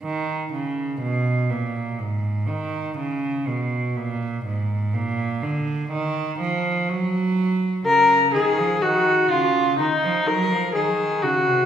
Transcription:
<<
  \new Staff \with { instrumentName = "Viola" } { \time 4/4 \key ees \minor \tempo 4 = 62 r1 | r1 | bes'8 aes'8 ges'8 f'8 ees'8 bes'8 aes'8 ges'8 | }
  \new Staff \with { instrumentName = "Cello" } { \clef bass \time 4/4 \key ees \minor ees8 des8 ces8 bes,8 aes,8 ees8 des8 ces8 | bes,8 aes,8 bes,8 d8 ees8 f8 ges4 | des8 ees16 f16 ees8 des8 ees16 f16 ges16 f16 ees8 des16 c16 | }
>>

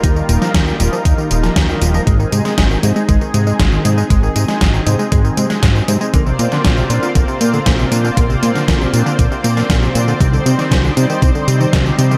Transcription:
<<
  \new Staff \with { instrumentName = "Analog synth pad" } { \time 4/4 \key aes \lydian \tempo 4 = 118 << { <bes ees' bes'>1 | <c' aes'>1~ | <c' aes'>1 | <c'' d''>1~ |
<c'' d''>1~ | <c'' d''>1 | } \\ { <g f'>1 | r1 | r1 | <bes f'>1~ |
<bes f'>1 | <g ees'>1 | } >> }
  \new Staff \with { instrumentName = "Clean electric guitar" } { \time 4/4 \key aes \lydian ees'16 r16 ees'16 ees'16 ees'16 r16 g'16 bes'16 ees'16 r16 ees'16 ees'16 ees'16 r16 g'16 bes'16 | aes16 r16 aes16 aes16 aes16 r16 c'16 ees'16 aes16 r16 aes16 aes16 aes16 r16 c'16 ees'16 | aes16 r16 aes16 aes16 aes16 r16 c'16 ees'16 aes16 r16 aes16 aes16 aes16 r16 c'16 ees'16 | bes16 r16 bes16 bes16 bes16 r16 d'16 f'16 bes16 r16 bes16 bes16 bes16 r16 d'16 f'16 |
bes16 r16 bes16 bes16 bes16 r16 d'16 f'16 bes16 r16 bes16 bes16 bes16 r16 d'16 f'16 | c'16 r16 c'16 c'16 c'16 r16 ees'16 g'16 c'16 r16 c'16 c'16 c'16 r16 ees'16 g'16 | }
  \new Staff \with { instrumentName = "Synth arpeggio sound" } { \clef bass \time 4/4 \key aes \lydian f16 ees16 bes,16 f16 f16 ees16 bes,16 f16 f16 ees16 bes,16 f16 f16 ees16 bes,16 f16 | aes16 ees16 c16 aes16 aes16 ees16 c16 aes16 aes16 ees16 c16 aes16 aes16 ees16 c16 aes16 | aes16 ees16 c16 aes16 aes16 ees16 c16 aes16 aes16 ees16 c16 aes16 aes16 ees16 c16 aes16 | d16 c16 bes,16 d16 d16 c16 bes,16 d16 d16 c16 bes,16 d16 d16 c16 bes,16 d16 |
d16 c16 bes,16 d16 d16 c16 bes,16 d16 d16 c16 bes,16 d16 d16 c16 bes,16 d16 | ees16 d16 c16 ees16 ees16 d16 c16 ees16 ees16 d16 c16 ees16 ees16 d16 c16 ees16 | }
  \new Staff \with { instrumentName = "Analog synth bass" } { \clef bass \time 4/4 \key aes \lydian ees,8 ees,,8 ees,8 ees,,8 ees,8 ees,,8 ees,8 ees,,8 | aes,,8 aes,8 aes,,8 aes,8 aes,,8 aes,8 aes,,8 aes,8 | aes,,8 aes,8 aes,,8 aes,8 aes,,8 aes,8 aes,,8 aes,8 | bes,,8 bes,8 bes,,8 bes,8 bes,,8 bes,8 bes,,8 bes,8 |
bes,,8 bes,8 bes,,8 bes,8 bes,,8 bes,8 bes,,8 bes,8 | c,8 c8 c,8 c8 c,8 c8 c,8 c8 | }
  \new DrumStaff \with { instrumentName = "Drums" } \drummode { \time 4/4 <hh bd tamb>16 tamb16 <hh tamb>16 <sn tamb>16 <hh bd sn tamb>16 tamb16 <hh tamb>16 tamb16 <hh bd tamb>16 tamb16 <hh tamb>16 <sn tamb>16 <hh bd sn tamb>16 tamb16 <hh tamb>16 tamb16 | <hh bd tamb>16 tamb16 <hh tamb>16 <sn tamb>16 <hh bd sn tamb>16 tamb16 <hh tamb>16 tamb16 <hh bd tamb>16 tamb16 <hh tamb>16 tamb16 <hh bd sn tamb>16 tamb16 <hh tamb>16 tamb16 | <hh bd tamb>16 tamb16 <hh tamb>16 <sn tamb>16 <hh bd sn tamb>16 tamb16 <hh tamb>16 tamb16 <hh bd tamb>16 tamb16 <hh tamb>16 <sn tamb>16 <hh bd sn tamb>16 tamb16 <hh tamb>16 tamb16 | <hh bd tamb>16 tamb16 <hh tamb>16 <sn tamb>16 <hh bd sn tamb>16 tamb16 <hh tamb>16 tamb16 <hh bd tamb>16 tamb16 <hh tamb>16 tamb16 <hh bd sn tamb>16 tamb16 <hh tamb>16 tamb16 |
<hh bd tamb>16 tamb16 <hh tamb>16 <sn tamb>16 <hh bd sn tamb>16 tamb16 <hh tamb>16 tamb16 <hh bd tamb>16 tamb16 <hh tamb>16 <sn tamb>16 <hh bd sn tamb>16 tamb16 <hh tamb>16 tamb16 | <hh bd tamb>16 tamb16 <hh tamb>16 <sn tamb>16 <hh bd sn tamb>16 tamb16 <hh tamb>16 tamb16 <hh bd tamb>16 tamb16 <hh tamb>16 tamb16 <hh bd sn tamb>16 tamb16 <hh tamb>16 tamb16 | }
>>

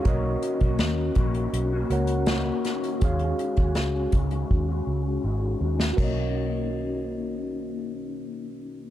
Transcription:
<<
  \new Staff \with { instrumentName = "Tine electric piano" } { \time 4/4 \key b \lydian \tempo 4 = 81 <fis' ais' cis'' dis''>2~ <fis' ais' cis'' dis''>8 <fis' ais' cis'' fis''>4. | <fis' gis' cis'' eis''>1 | <fis' ais' cis'' dis''>1 | }
  \new Staff \with { instrumentName = "Clean electric guitar" } { \time 4/4 \key b \lydian <b, ais cis' fis'>8. <ais cis' fis'>8. <dis ais cis' fis'>8. <ais cis' fis'>8. <dis ais cis' fis'>8 <dis ais cis' fis'>8 | <dis gis cis' fis'>8. <gis cis' fis'>8. <dis gis cis' fis'>8. <gis cis' fis'>8. <dis gis cis' fis'>8 <dis gis cis' fis'>8 | <b, dis ais cis' fis'>1 | }
  \new Staff \with { instrumentName = "Fingered electric bass" } { \clef bass \time 4/4 \key b \lydian b,,8 r16 b,,16 dis,8 ais,,8 b,,8 cis,4 r8 | dis,8 r16 dis,16 cis,8 cis,8 dis,8 cis,8 gis,,8 dis,8 | b,,1 | }
  \new DrumStaff \with { instrumentName = "Drums" } \drummode { \time 4/4 <hh bd>8 hh16 <hh bd>16 <hh sn>8 <hh bd>16 hh16 hh8 hh16 hh16 <hh sn>8 <hh sn>16 hh16 | <hh bd>16 hh16 hh16 <hh bd>16 <hh sn>8 <hh bd>16 hh16 bd4 r8. sn16 | <cymc bd>4 r4 r4 r4 | }
>>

